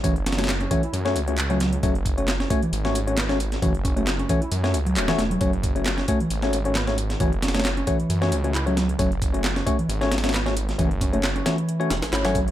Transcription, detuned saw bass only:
X:1
M:4/4
L:1/16
Q:"Swing 16ths" 1/4=134
K:F#m
V:1 name="Detuned saw bass" clef=bass
F,,,4- F,,, z3 F,,2 C,,4- C,, z | F,,,4- F,,, z3 G,,,6- G,,, z | F,,,4- F,,, z3 F,,2 C,,2 E,,, z E,,, z | F,,,4- F,,, z3 G,,,6- G,,, z |
F,,,4- F,,, z3 F,,2 C,,4- C,, z | F,,,4- F,,, z3 G,,,6- G,,, z | F,,,4- F,,, z4 z E,,, G,,, G,,,3 z |]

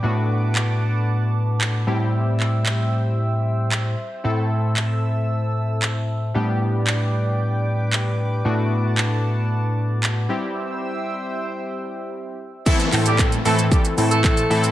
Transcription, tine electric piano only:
X:1
M:4/4
L:1/8
Q:1/4=114
K:Ador
V:1 name="Tine electric piano" clef=bass
A,,6- A,, A,,- | A,,6- A,, z | A,,8 | A,,8 |
A,,6- A,, z | z8 | z A,,2 A,, z A,,2 A,, |]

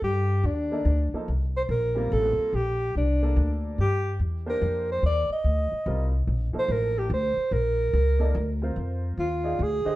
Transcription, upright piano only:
X:1
M:3/4
L:1/8
Q:"Swing" 1/4=144
K:Cdor
V:1 name="Upright piano"
z3 [B,EAd] z [F,B,EA] | z3 [G,B,CF]3 | z3 [B,DAd]3 | z3 [B,DGc]3 |
z4 [G,CFB] z | z [F,B,EA]3 z2 | z3 [B,EAd] z [CFBc]- | [K:Fdor] [CFBc]2 z [EAdf] z [D,Gce] |]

